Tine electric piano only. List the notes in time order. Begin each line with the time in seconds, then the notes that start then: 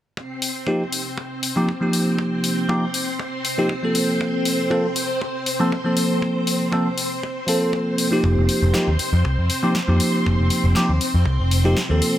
0.67 F3 A#3 D#4 G4
1.56 F3 A#3 D#4 G4
1.81 F3 A#3 D#4 G4
2.69 F3 A#3 D#4 G4
3.58 F3 A#3 D#4 G4
3.83 F3 A#3 C4 A4
4.70 F3 A#3 C4 A4
5.60 F3 A#3 C4 A4
5.84 F3 A#3 C4 A4
6.72 F3 A#3 C4 A4
7.47 F3 A#3 C4 A4
8.11 F3 A#3 D#4 G4
8.73 F3 A#3 D#4 G4
9.63 F3 A#3 D#4 G4
9.87 F3 A#3 D#4 G4
10.75 F3 A#3 D#4 G4
11.64 F3 A#3 D#4 G4
11.89 F3 A#3 C4 A4